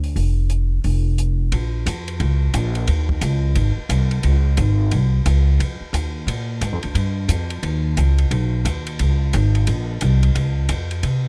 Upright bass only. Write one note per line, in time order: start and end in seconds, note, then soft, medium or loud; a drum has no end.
0.00 0.14 D2 medium
0.16 0.81 F1 medium
0.84 1.49 F1 medium
1.52 1.85 A#1 medium
1.86 2.19 F2 medium
2.20 2.53 C#2 medium
2.54 2.87 A#1 medium
2.88 3.21 D#2 medium
3.21 3.55 C#2 medium
3.55 3.75 G#1 medium
3.77 muted upright bass stroke soft
3.89 4.22 C2 medium
4.24 4.57 C#2 medium
4.58 4.90 G#1 medium
4.92 5.25 C2 medium
5.26 5.58 C#2 medium
5.60 5.79 F2 medium
5.80 muted upright bass stroke soft
5.93 6.26 D#2 medium
6.27 6.60 A#2 medium
6.61 6.72 G#2 medium
6.72 6.83 F2 soft
6.84 6.94 D2 medium
6.95 7.28 G2 medium
7.28 7.62 F2 medium
7.63 7.96 D#2 medium
7.97 8.30 C#2 medium
8.31 8.64 B1 medium
8.65 8.98 D#2 medium
8.99 9.32 C#2 medium
9.34 9.66 G#1 loud
9.67 10.00 A#1 medium
10.02 10.34 C2 medium
10.35 10.68 C#2 medium
10.69 11.02 F2 medium
11.03 11.28 C3 medium